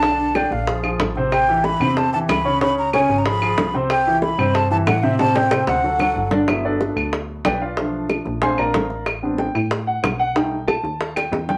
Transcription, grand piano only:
X:1
M:4/4
L:1/8
Q:1/4=186
K:G
V:1 name="Grand piano"
[D,Dd]2 [D,Dd]2 [=F,=F_A] [F,FA]2 [C,Cc]- | [C,Cc] [E,EG]2 [C,Cc]2 [E,EG]2 [^C,^C^c] | [^C,^C^c]2 [C,Cc]2 [^E,^E^G] [E,EG]2 [=C,=C=c]- | [C,Cc] [E,EG]2 [C,Cc]2 [E,EG]2 [C,Cc] |
[C,Cc]2 [C,Cc]2 [F,FA] [F,FA]2 [D,Dd] | [Ee] [DABd]3 z2 [GBdg] [=FBd=f]- | [=FBd=f]2 z2 [cf_ac'] [_Bdf_b]3 | z2 g3 f2 f |
g2 a3 g2 g |]
V:2 name="Grand piano"
z8 | z8 | z8 | z8 |
z8 | [F,A,B,]8 | [=F,A,D]4 [_A,CD]3 z | z [G,B,CD] z6 |
[G,A,^D] z6 z |]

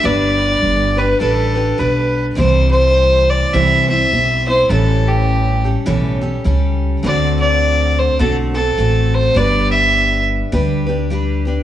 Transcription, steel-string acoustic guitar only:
X:1
M:4/4
L:1/8
Q:"Swing" 1/4=103
K:C
V:1 name="Steel-string acoustic guitar"
[G,DGB]3 [DGB] [G,DGB] [DGB] [G,DGB]2 | [C,E,G,CEc]4 [C,E,G,CEc] [G,CEc] [G,CEc] [G,CEc] | [A,,E,G,^CGA]3 [G,CGA] [A,,E,G,CGA] [G,CGA] [G,CGA]2 | [D,A,C^FA]4 [D,A,CFA] [CFA] [A,CFA]2 |
[G,DGB]4 [G,DGB] [DGB] [G,DGB] [DGB] |]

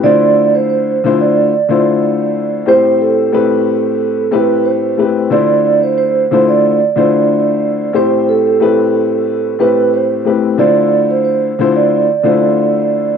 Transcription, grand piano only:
X:1
M:4/4
L:1/8
Q:"Swing 16ths" 1/4=91
K:Dm
V:1 name="Grand piano"
[D,A,EFc]3 [D,A,EFc] z [D,A,EFc]3 | [A,,A,CGc]2 [A,,A,CG=B]3 [A,,A,CGB]2 [A,,A,CGB] | [D,A,EFc]3 [D,A,EFc] z [D,A,EFc]3 | [A,,A,CGc]2 [A,,A,CG=B]3 [A,,A,CGB]2 [A,,A,CGB] |
[D,A,EFc]3 [D,A,EFc] z [D,A,EFc]3 |]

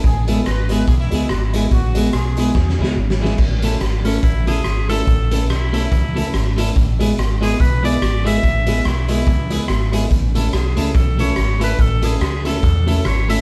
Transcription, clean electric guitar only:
X:1
M:4/4
L:1/8
Q:"Swing" 1/4=143
K:A
V:1 name="Clean electric guitar"
z [G,B,EG] z [G,B,EG] z [G,B,EG] z [G,B,EG] | z [G,B,EG] z [G,B,EG] z [G,B,EG] z [G,B,EG] | z [A,CEA] z [A,CEA] z [A,CEA] z [A,CEA] | z [A,CEA] z [A,CEA] z [A,CEA] z [A,CEA] |
z [G,B,EG] z [G,B,EG] z [G,B,EG] z [G,B,EG] | z [G,B,EG] z [G,B,EG] z [G,B,EG] z [G,B,EG] | z [A,CEA] z [A,CEA] z [A,CEA] z [A,CEA] | z [A,CEA] z [A,CEA] z [A,CEA] z [A,CEA] |]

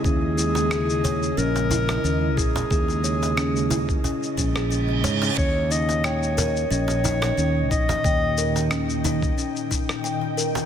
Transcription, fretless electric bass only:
X:1
M:4/4
L:1/8
Q:"Swing 16ths" 1/4=90
K:none
V:1 name="Fretless electric bass" clef=bass
_E,,4 _B,,,2 E,, B,,, | _E,,4 z _B,,,2 _A,, | _E,,4 _B,,,2 E,, B,,, | _E,,4 z4 |]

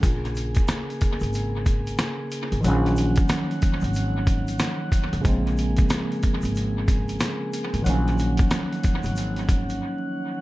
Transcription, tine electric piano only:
X:1
M:4/4
L:1/8
Q:"Swing 16ths" 1/4=92
K:Bbm
V:1 name="Tine electric piano" clef=bass
z8 | [E,F,G,B,D]8 | [D,F,A,B,C]8 | [E,F,G,B,D]8 |]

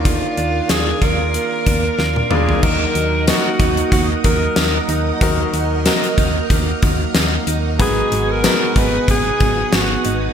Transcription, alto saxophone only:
X:1
M:4/4
L:1/16
Q:"Swing 16ths" 1/4=93
K:Ebm
V:1 name="Alto saxophone"
F4 A2 B8 A2 | B4 G4 G2 B4 z2 | z16 | A3 B3 c2 A4 G3 z |]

